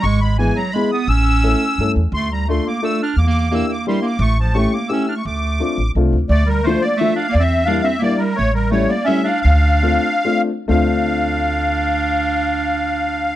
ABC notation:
X:1
M:3/4
L:1/16
Q:1/4=172
K:Dm
V:1 name="Accordion"
^c'2 =b2 ^g2 _b2 =b2 _e'2 | e'8- e'2 z2 | c'2 b2 c'2 d'2 e'2 f'2 | d' d'3 e'2 d'2 c'2 d'2 |
^c'2 a2 c'2 d'2 e'2 f' c' | d'8 z4 | d2 B2 c2 d2 e2 f2 | d e3 f2 e2 d2 B2 |
^c2 B2 c2 d2 e2 f2 | f8- f2 z2 | f12- | f12 |]
V:2 name="Upright piano"
z4 [^G,=B,E^G]2 z2 [G,B,EG]2 z2 | z4 [A,^CEA]2 z2 [A,CEA]2 z2 | z4 [A,DFA]2 z2 [A,DFA]2 z2 | z4 [B,DEG]2 z2 [B,DEG]2 z2 |
z4 [A,^CEG]2 z2 [A,CEG]2 z2 | z4 [A,CDF]2 z2 [A,CDF]2 z2 | z4 [F,A,DF]2 z2 [F,A,DF]2 z2 | z4 [G,B,DE]2 z2 [G,B,DE]2 z2 |
z4 [G,A,^CE]2 z2 [G,A,CE]2 z2 | z4 [A,CDF]2 z2 [A,CDF]2 z2 | [A,CDF]12- | [A,CDF]12 |]
V:3 name="Clarinet"
^G,2 G,2 E,2 ^F,2 G,2 =B,2 | ^C8- C2 z2 | A,2 G,2 A,2 B,2 A,2 D2 | B, B,3 B,2 B,2 G,2 B,2 |
A,2 F,2 A,2 B,2 ^C2 D A, | A,8 z4 | A,2 G,2 A,2 B,2 A,2 D2 | B, C3 D2 C2 B,2 G,2 |
A,2 G,2 A,2 B,2 ^C2 D2 | D8- D2 z2 | D12- | D12 |]
V:4 name="Upright bass" clef=bass
^G,,,8 z4 | A,,,8 G,,2 E,,2 | D,,8 z4 | E,,8 z4 |
A,,,8 z4 | D,,6 A,,,2 C,,2 D,,2 | D,,8 z4 | E,,8 z4 |
A,,,8 z4 | D,,8 z4 | D,,12- | D,,12 |]